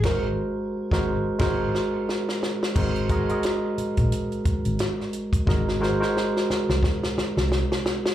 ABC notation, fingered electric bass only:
X:1
M:4/4
L:1/16
Q:"Swing 16ths" 1/4=88
K:Ab
V:1 name="Fingered electric bass" clef=bass
A,,,2 z3 A,,,2 z A,,,2 z6 | A,,,3 z4 B,,, z3 A,,, z4 | A,,,3 z4 C,, z3 C,,2 z3 |]